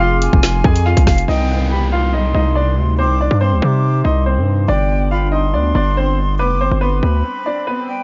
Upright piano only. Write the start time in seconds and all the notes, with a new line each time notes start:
0.00 F4 F5
0.65 G#4 G#5
0.86 F4 F5
1.28 D#4 D#5
1.70 G4 G5
1.92 F4 F5
2.14 D#4 D#5
2.35 D#4 D#5
2.55 D4 D5
2.99 C4 C5
3.21 D4 D5
3.41 C4 C5
4.04 D#4 D#5
4.26 C4 C5
4.68 D4 D5
5.11 F4 F5
5.32 D#4 D#5
5.54 D4 D5
5.75 D4 D5
5.97 C4 C5
6.39 B3 B4
6.61 C4 C5
6.81 B3 B4
7.46 D4 D5
7.67 B3 B4